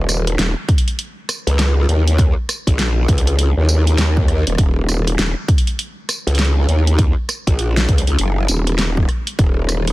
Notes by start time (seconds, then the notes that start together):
Already playing: D#1
0.09 cross-stick, closed hi-hat, tambourine
0.27 closed hi-hat
0.38 D#1, snare, closed hi-hat
0.69 kick, closed hi-hat
0.78 closed hi-hat
0.88 closed hi-hat
0.99 closed hi-hat
1.29 cross-stick, closed hi-hat, tambourine
1.47 C#2, closed hi-hat
1.59 snare, closed hi-hat
1.89 D#2, closed hi-hat
2.08 closed hi-hat
2.18 kick, cross-stick, closed hi-hat
2.49 cross-stick, closed hi-hat, tambourine
2.67 A#1, kick, closed hi-hat
2.79 snare, closed hi-hat
3.08 C#2, kick, closed hi-hat
3.18 closed hi-hat
3.27 closed hi-hat
3.39 closed hi-hat
3.57 D#2
3.69 tambourine
3.87 closed hi-hat
3.98 D#2, snare, closed hi-hat
4.17 kick
4.28 cross-stick, closed hi-hat
4.47 D#1, closed hi-hat
4.58 D#1, kick, cross-stick, closed hi-hat
4.89 cross-stick, closed hi-hat, tambourine
5.08 closed hi-hat
5.19 D#1, snare, closed hi-hat
5.48 kick, closed hi-hat
5.58 closed hi-hat
5.67 closed hi-hat
5.79 closed hi-hat
6.09 cross-stick, closed hi-hat, tambourine
6.27 C#2, closed hi-hat
6.35 snare, closed hi-hat
6.39 closed hi-hat
6.45 closed hi-hat
6.68 D#2, closed hi-hat
6.87 closed hi-hat
6.99 kick, cross-stick, closed hi-hat
7.29 cross-stick, closed hi-hat, tambourine
7.47 A#1, kick, closed hi-hat
7.59 closed hi-hat
7.77 snare
7.89 C#2, kick, closed hi-hat
7.98 closed hi-hat
8.07 C#2, closed hi-hat
8.19 F#1, closed hi-hat
8.48 D#1, closed hi-hat, tambourine
8.67 closed hi-hat
8.79 snare, closed hi-hat
8.97 kick
9.09 cross-stick, closed hi-hat
9.27 closed hi-hat
9.39 D#1, kick, cross-stick, closed hi-hat
9.69 cross-stick, closed hi-hat, tambourine
9.87 closed hi-hat